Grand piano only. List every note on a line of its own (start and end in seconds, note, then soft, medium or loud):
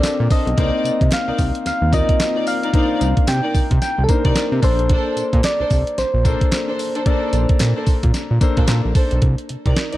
0.00 0.58 C4 medium
0.00 0.59 D4 medium
0.00 0.59 A4 medium
0.00 0.59 A#4 medium
0.58 1.39 A#3 medium
0.58 1.39 C4 medium
0.58 1.40 D#4 medium
0.58 1.40 C5 medium
1.92 2.55 A#3 medium
1.92 2.55 C4 medium
1.92 2.55 D#4 medium
1.92 2.56 F4 medium
2.73 3.55 A#3 medium
2.73 3.55 D4 medium
2.73 3.55 D#4 medium
2.73 3.56 C5 medium
4.09 4.60 A#3 medium
4.09 4.61 D4 medium
4.09 4.63 D#4 medium
4.09 4.62 C5 medium
4.62 5.50 A#3 medium
4.62 5.50 D4 medium
4.62 5.50 A4 medium
4.62 5.51 C5 medium
6.25 6.87 A#3 medium
6.25 6.88 D4 medium
6.25 6.88 A4 medium
6.25 6.88 C5 medium
7.06 7.87 A#3 medium
7.06 7.87 D4 medium
7.06 7.88 A4 medium
7.06 7.88 D5 loud
8.41 9.04 A#3 medium
8.41 9.04 D4 medium
8.41 9.04 A4 medium
8.41 9.04 C5 loud